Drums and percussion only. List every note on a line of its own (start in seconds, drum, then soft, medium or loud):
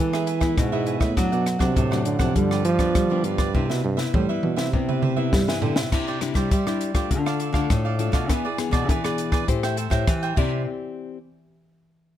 0.14 cross-stick medium
0.27 closed hi-hat soft
0.41 kick medium
0.41 cross-stick medium
0.41 closed hi-hat soft
0.58 kick medium
0.58 cross-stick medium
0.58 closed hi-hat medium
0.86 closed hi-hat soft
1.01 kick medium
1.01 cross-stick medium
1.17 kick medium
1.17 cross-stick medium
1.17 closed hi-hat medium
1.33 closed hi-hat soft
1.46 cross-stick medium
1.46 closed hi-hat soft
1.60 kick medium
1.60 cross-stick medium
1.60 closed hi-hat soft
1.77 kick medium
1.77 closed hi-hat medium
1.92 cross-stick medium
2.05 closed hi-hat soft
2.20 kick medium
2.20 cross-stick medium
2.20 closed hi-hat soft
2.36 kick medium
2.36 closed hi-hat medium
2.51 cross-stick medium
2.65 closed hi-hat medium
2.79 kick medium
2.79 cross-stick medium
2.79 closed hi-hat soft
2.95 kick medium
2.95 cross-stick medium
2.95 closed hi-hat medium
3.24 closed hi-hat soft
3.38 kick medium
3.38 cross-stick medium
3.38 closed hi-hat soft
3.55 kick medium
3.70 snare soft
3.98 snare soft
4.14 kick medium
4.14 mid tom medium
4.43 mid tom medium
4.57 snare medium
4.73 kick medium
4.89 mid tom medium
5.03 mid tom medium
5.33 kick medium
5.33 snare medium
5.48 snare medium
5.62 floor tom medium
5.76 snare medium
5.92 kick medium
5.92 cross-stick medium
5.92 crash medium
6.08 closed hi-hat soft
6.21 cross-stick medium
6.21 closed hi-hat soft
6.35 kick medium
6.35 cross-stick medium
6.35 closed hi-hat soft
6.51 kick medium
6.51 closed hi-hat medium
6.67 cross-stick medium
6.67 closed hi-hat soft
6.81 closed hi-hat soft
6.95 kick medium
6.95 cross-stick medium
6.95 closed hi-hat soft
7.11 kick medium
7.11 closed hi-hat medium
7.26 cross-stick medium
7.40 closed hi-hat soft
7.54 kick medium
7.54 cross-stick medium
7.70 kick medium
7.70 cross-stick medium
7.70 closed hi-hat medium
7.99 closed hi-hat soft
8.13 kick medium
8.13 cross-stick medium
8.13 closed hi-hat soft
8.29 kick medium
8.29 cross-stick medium
8.29 closed hi-hat medium
8.58 cross-stick medium
8.58 closed hi-hat medium
8.73 kick medium
8.73 cross-stick medium
8.73 closed hi-hat soft
8.89 kick medium
8.89 closed hi-hat medium
9.04 cross-stick medium
9.04 closed hi-hat soft
9.18 closed hi-hat soft
9.32 kick medium
9.32 cross-stick medium
9.48 kick medium
9.48 closed hi-hat medium
9.63 cross-stick medium
9.63 closed hi-hat soft
9.77 closed hi-hat soft
9.91 kick medium
9.91 cross-stick medium
9.91 closed hi-hat soft
10.07 kick medium
10.07 cross-stick medium
10.07 closed hi-hat medium
10.23 closed hi-hat soft
10.37 kick medium
10.37 crash medium